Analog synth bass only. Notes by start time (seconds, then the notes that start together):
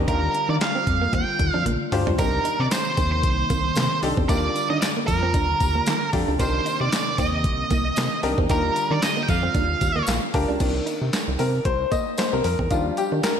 0.08 D#2
0.49 D#3
0.87 F2
1.13 D#2
1.40 D#2
1.54 F2
1.66 A#1
1.92 D2
2.07 C#2
2.19 C2
2.60 C3
2.98 D#2
3.23 C2
3.50 C2
3.76 C3
4.03 C2
4.17 E2
4.29 D#2
4.70 D#3
5.08 F2
5.34 D#2
5.61 D#2
5.87 D#3
6.13 F2
6.28 C#2
6.39 C2
6.81 C3
7.18 D#2
7.44 C2
7.71 C2
7.97 C3
8.23 C2
8.38 E2
8.50 D#2
8.91 D#3
9.29 F2
9.55 D#2
9.81 D#2
10.08 A#1
10.34 D2
10.49 C#2
10.60 C2
11.02 C3
11.28 C2
11.39 C3
11.65 C2
12.33 C2
12.45 F2
12.59 E2
12.71 D#2
13.12 D#3